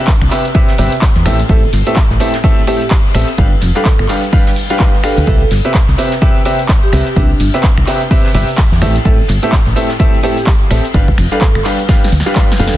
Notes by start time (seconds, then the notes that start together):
0.07 kick, snare, clap, closed hi-hat, ride, tambourine, cabasa
0.21 C2, finger snap, tambourine
0.31 C3 C4 G4 B4 E5, clap, open hi-hat, ride, tambourine, cabasa
0.45 closed hi-hat, ride, tambourine, cabasa
0.55 C3 C4 G4 B4 E5, kick, closed hi-hat, open hi-hat, tambourine, cabasa
0.68 snare, tambourine
0.78 G1 C3 C4 G4 B4 E5, open hi-hat, ride, tambourine, cabasa
0.92 closed hi-hat, tambourine, cabasa
1.02 kick, snare, clap, closed hi-hat, ride, tambourine, cabasa
1.15 E2, snare, tambourine
1.25 A1 A2 C4 G4 A4 E5, finger snap, open hi-hat, ride, tambourine, cabasa
1.39 closed hi-hat, ride, tambourine, cabasa
1.49 A1 A2 C4 G4 A4 E5, kick, closed hi-hat, ride, tambourine, cabasa
1.64 tambourine
1.73 G1, snare, open hi-hat, ride, tambourine, cabasa
1.86 A2 C4 G4 A4 E5, closed hi-hat, ride, tambourine, cabasa
1.96 kick, snare, clap, closed hi-hat, ride, tambourine, cabasa
2.10 A1, snare, tambourine
2.20 A2 C4 G4 A4 E5, open hi-hat, ride, tambourine, cabasa
2.34 snare, closed hi-hat, tambourine, cabasa
2.44 A2 C4 G4 A4 E5, kick, closed hi-hat, ride, tambourine, cabasa
2.58 ride, tambourine
2.67 A2 C4 G4 A4 E5, open hi-hat, ride, tambourine, cabasa
2.81 closed hi-hat, tambourine, cabasa
2.90 kick, snare, clap, closed hi-hat, ride, tambourine, cabasa
3.05 tambourine
3.15 A1 C4 G4 A4 E5, finger snap, open hi-hat, ride, tambourine, cabasa
3.28 closed hi-hat, ride, tambourine, cabasa
3.38 G1 G3 D4 G4 B4 F5, kick, closed hi-hat, ride, tambourine, cabasa
3.53 tambourine
3.61 F1, snare, open hi-hat, ride, tambourine, cabasa
3.75 G3 D4 G4 A4 B4 F5, snare, closed hi-hat, tambourine, cabasa
3.85 kick, snare, clap, closed hi-hat, ride, tambourine, cabasa
3.99 G1, finger snap, tambourine
4.09 G3 D4 G4 B4 F5, clap, open hi-hat, ride, tambourine, cabasa
4.23 closed hi-hat, ride, tambourine, cabasa
4.32 G3 D4 G4 B4 F5, kick, closed hi-hat, open hi-hat, tambourine, cabasa
4.46 snare, tambourine
4.56 open hi-hat, ride, tambourine, cabasa
4.70 G3 D4 G4 B4 F5, closed hi-hat, tambourine, cabasa
4.79 G3 D4 G4, kick, snare, clap, closed hi-hat, ride, tambourine, cabasa
4.94 snare, tambourine
5.03 D4 G4 A4 B4 F5, finger snap, open hi-hat, ride, tambourine, cabasa
5.18 D2, closed hi-hat, ride, tambourine, cabasa
5.27 C2 C3 C4 G4 A4 B4 E5, kick, closed hi-hat, ride, tambourine, cabasa
5.41 tambourine
5.51 G1, snare, open hi-hat, ride, tambourine, cabasa
5.65 C3 C4 G4 B4 E5, closed hi-hat, ride, tambourine, cabasa
5.74 kick, snare, clap, closed hi-hat, ride, tambourine, cabasa
5.88 C2, snare, tambourine
5.98 C3 C4 G4 B4 E5, open hi-hat, ride, tambourine, cabasa
6.12 snare, closed hi-hat, tambourine, cabasa
6.22 C3 C4 G4 B4 E5, kick, closed hi-hat, ride, tambourine, cabasa
6.35 ride, tambourine
6.45 C3 C4 G4 B4 E5, open hi-hat, ride, tambourine, cabasa
6.59 closed hi-hat, tambourine, cabasa
6.69 kick, snare, clap, closed hi-hat, ride, tambourine, cabasa
6.82 G4, tambourine
6.93 C2 C3 C4 G4 B4 E5, finger snap, open hi-hat, ride, tambourine, cabasa
7.07 closed hi-hat, ride, tambourine, cabasa
7.16 C2 C3 C4 D4 G4 B4 E5, kick, closed hi-hat, ride, tambourine, cabasa
7.30 D4, tambourine
7.40 G1, snare, open hi-hat, ride, tambourine, cabasa
7.54 C3 C4 G4 B4 E5, snare, closed hi-hat, tambourine, cabasa
7.63 kick, snare, clap, closed hi-hat, ride, tambourine, cabasa
7.77 C2, finger snap, tambourine
7.87 C3 C4 G4 B4 E5, clap, open hi-hat, ride, tambourine, cabasa
8.01 closed hi-hat, ride, tambourine, cabasa
8.11 C3 C4 G4 B4 E5, kick, closed hi-hat, open hi-hat, tambourine, cabasa
8.24 snare, tambourine
8.34 G1 C3 C4 G4 B4 E5, open hi-hat, ride, tambourine, cabasa
8.48 closed hi-hat, tambourine, cabasa
8.57 kick, snare, clap, closed hi-hat, ride, tambourine, cabasa
8.72 E2, snare, tambourine
8.81 A1 A2 C4 G4 A4 E5, finger snap, open hi-hat, ride, tambourine, cabasa
8.96 closed hi-hat, ride, tambourine, cabasa
9.05 A1 A2 C4 G4 A4 E5, kick, closed hi-hat, ride, tambourine, cabasa
9.19 tambourine
9.28 G1, snare, open hi-hat, ride, tambourine, cabasa
9.42 A2 C4 G4 A4 E5, closed hi-hat, ride, tambourine, cabasa
9.52 kick, snare, clap, closed hi-hat, ride, tambourine, cabasa
9.66 A1, snare, tambourine
9.76 A2 C4 G4 A4 E5, open hi-hat, ride, tambourine, cabasa
9.90 snare, closed hi-hat, tambourine, cabasa
10.00 A2 C4 G4 A4 E5, kick, closed hi-hat, ride, tambourine, cabasa
10.13 ride, tambourine
10.23 A2 C4 G4 A4 E5, open hi-hat, ride, tambourine, cabasa
10.37 closed hi-hat, tambourine, cabasa
10.47 kick, snare, clap, closed hi-hat, ride, tambourine, cabasa
10.62 tambourine
10.70 A1 C4 G4 A4 E5, finger snap, open hi-hat, ride, tambourine, cabasa
10.84 closed hi-hat, ride, tambourine, cabasa
10.93 G1 G3 D4 G4 B4 F5, kick, closed hi-hat, ride, tambourine, cabasa
11.08 kick, tambourine
11.18 F1, finger snap, snare, open hi-hat, ride, tambourine, cabasa
11.32 G3 D4 G4 A4 B4 F5, snare, closed hi-hat, tambourine, cabasa
11.41 kick, snare, clap, closed hi-hat, ride, tambourine, cabasa
11.55 G1, finger snap, tambourine
11.65 G3 D4 G4 B4 F5, snare, clap, open hi-hat, ride, tambourine, cabasa
11.78 closed hi-hat, tambourine, cabasa
11.89 G3 D4 G4 B4 F5, kick, snare, closed hi-hat, ride, tambourine, cabasa
12.02 snare, ride, tambourine
12.12 D2, open hi-hat, ride, tambourine, cabasa
12.20 snare
12.26 G3 D4 G4 B4 F5, closed hi-hat, tambourine, cabasa
12.35 G3 D4 G4 B4, kick, snare, clap, closed hi-hat, ride, tambourine, cabasa
12.50 snare, tambourine
12.59 F1 D4 G4 A4 B4 F5, open hi-hat, ride, tambourine, cabasa
12.68 snare
12.73 D2, closed hi-hat, ride, cabasa